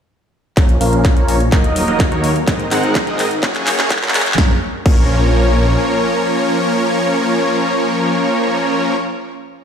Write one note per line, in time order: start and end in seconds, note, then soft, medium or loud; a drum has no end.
0.57 0.78 A#1 medium
0.57 0.76 F3 medium
0.57 0.76 A#3 medium
0.57 0.76 C#4 medium
0.57 0.76 A#4 medium
0.57 0.76 C#5 medium
0.57 kick loud
0.57 clap soft
0.57 closed hi-hat medium
0.69 closed hi-hat soft
0.81 1.14 A#1 medium
0.81 1.14 F3 medium
0.81 1.14 A#3 medium
0.81 1.14 C#4 medium
0.81 1.14 A#4 medium
0.81 1.14 F5 loud
0.81 open hi-hat loud
0.93 closed hi-hat soft
1.05 kick loud
1.05 clap soft
1.05 closed hi-hat medium
1.17 1.50 A#1 medium
1.17 1.35 F3 medium
1.17 1.35 A#3 medium
1.17 1.35 C#4 medium
1.17 1.35 A#4 medium
1.17 1.35 C#5 loud
1.17 closed hi-hat soft
1.28 open hi-hat medium
1.40 closed hi-hat soft
1.52 1.86 D#1 medium
1.52 1.85 F#3 medium
1.52 1.85 A#3 medium
1.52 1.85 D#4 medium
1.52 1.85 A#4 medium
1.52 1.85 D#5 loud
1.52 kick loud
1.52 clap medium
1.52 closed hi-hat medium
1.64 closed hi-hat soft
1.76 open hi-hat loud
1.88 2.09 D#1 medium
1.88 2.07 F#3 medium
1.88 2.07 A#3 medium
1.88 2.07 D#4 medium
1.88 2.07 A#4 medium
1.88 2.07 D#5 medium
1.88 closed hi-hat soft
2.00 kick loud
2.00 clap medium
2.00 closed hi-hat medium
2.12 2.45 D#2 medium
2.12 2.30 F#3 medium
2.12 2.30 A#3 medium
2.12 2.30 D#4 medium
2.12 2.30 A#4 medium
2.12 2.30 C#5 loud
2.12 closed hi-hat soft
2.24 open hi-hat medium
2.36 closed hi-hat soft
2.47 2.69 G#1 loud
2.47 2.66 G#3 medium
2.47 2.66 C4 medium
2.47 2.66 D#4 medium
2.47 2.66 A#4 medium
2.47 2.66 D#5 medium
2.47 kick loud
2.47 clap medium
2.47 closed hi-hat medium
2.60 closed hi-hat soft
2.71 3.05 G#1 medium
2.71 3.04 G#3 loud
2.71 3.04 C4 medium
2.71 3.04 D#4 medium
2.71 3.04 A#4 medium
2.71 3.04 F#5 loud
2.71 clap medium
2.71 open hi-hat loud
2.83 closed hi-hat soft
2.95 kick loud
2.95 clap medium
2.95 closed hi-hat medium
3.07 3.40 G#1 medium
3.07 3.26 G#3 medium
3.07 3.26 C4 medium
3.07 3.26 D#4 medium
3.07 3.26 A#4 medium
3.07 3.26 D#5 loud
3.07 closed hi-hat soft
3.19 clap medium
3.19 open hi-hat loud
3.31 closed hi-hat soft
3.43 3.76 F#1 loud
3.43 3.76 F#3 medium
3.43 3.76 A#3 medium
3.43 3.76 C#4 medium
3.43 3.76 G#4 medium
3.43 3.76 C#5 loud
3.43 kick loud
3.43 clap medium
3.43 closed hi-hat medium
3.55 clap medium
3.55 closed hi-hat soft
3.67 clap loud
3.67 open hi-hat loud
3.78 4.00 F#1 loud
3.78 3.97 F#3 medium
3.78 3.97 A#3 medium
3.78 3.97 C#4 medium
3.78 3.97 G#4 medium
3.78 3.97 C#5 loud
3.78 clap medium
3.78 closed hi-hat soft
3.90 kick loud
3.90 clap loud
3.90 closed hi-hat loud
3.96 clap medium
4.02 4.36 F#2 medium
4.02 4.21 F#3 medium
4.02 4.21 A#3 medium
4.02 4.21 C#4 medium
4.02 4.21 G#4 medium
4.02 4.21 A#4 loud
4.02 clap medium
4.02 closed hi-hat soft
4.08 clap medium
4.14 clap loud
4.14 open hi-hat loud
4.20 clap medium
4.26 clap medium
4.26 closed hi-hat soft
4.32 clap loud
4.38 4.51 A#1 loud
4.38 4.51 F3 medium
4.38 4.51 A#3 medium
4.38 4.51 C#4 medium
4.38 4.51 A#4 medium
4.38 4.51 C#5 medium
4.38 kick loud
4.38 snare medium
4.86 5.77 A#1 loud
4.86 8.95 F3 medium
4.86 8.95 A#3 medium
4.86 8.95 C#4 medium
4.86 8.95 A#4 medium
4.86 8.95 C#5 medium
4.86 kick loud
4.86 crash medium